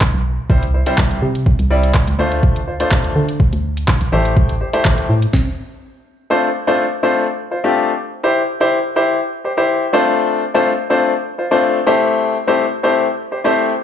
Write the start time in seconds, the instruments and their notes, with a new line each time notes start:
0.01 kick, clap
0.14 fm bass B1
0.50 fm bass C2, grand piano G3 C4 E4 C5, kick
0.63 closed hi-hat
0.74 grand piano E4 C5
0.86 grand piano G3 C4 E4 C5, closed hi-hat
0.98 fm bass C2, kick, clap
1.11 closed hi-hat
1.22 fm bass C3
1.35 closed hi-hat
1.46 kick
1.59 fm bass C2, closed hi-hat
1.70 grand piano G3 C4 E4 D5
1.83 closed hi-hat
1.95 kick, clap
2.07 fm bass C#2, closed hi-hat
2.19 fm bass D2, grand piano A3 D4 F4 C5
2.32 closed hi-hat
2.43 kick
2.56 closed hi-hat
2.67 grand piano F4 C5
2.80 grand piano A3 D4 F4 C5, closed hi-hat
2.91 fm bass D2, kick, clap
3.04 closed hi-hat
3.16 fm bass D3
3.29 closed hi-hat
3.40 kick
3.53 fm bass D2, closed hi-hat
3.77 closed hi-hat
3.88 kick, clap
4.01 fm bass A#1, closed hi-hat
4.12 fm bass A1, grand piano A3 E4 G4 C5
4.25 closed hi-hat
4.37 kick
4.49 closed hi-hat
4.61 grand piano G4 C5
4.73 grand piano A3 E4 G4 C5, closed hi-hat
4.85 fm bass A1, kick, clap
4.98 closed hi-hat
5.09 fm bass A2
5.22 closed hi-hat
5.33 kick, snare
6.30 grand piano A3 C4 D4 F4 C5
6.67 grand piano A3 C4 D4 F4 C5
7.03 grand piano A3 C4 D4 F4 C5
7.51 grand piano F4 C5
7.64 grand piano A3 C4 D4 F4 G4
8.23 grand piano E4 G4 C5
8.60 grand piano E4 G4 C5
8.96 grand piano E4 G4 C5
9.44 grand piano G4 C5
9.57 grand piano E4 G4 C5
9.93 grand piano A3 C4 D4 F4 C5
10.54 grand piano A3 C4 D4 F4 C5
10.90 grand piano A3 C4 D4 F4 C5
11.38 grand piano F4 C5
11.51 grand piano A3 C4 D4 F4 C5
11.87 grand piano A3 C4 E4 G4 C5
12.47 grand piano A3 C4 E4 G4 C5
12.83 grand piano A3 C4 E4 G4 C5
13.32 grand piano G4 C5
13.44 grand piano A3 C4 E4 G4 C5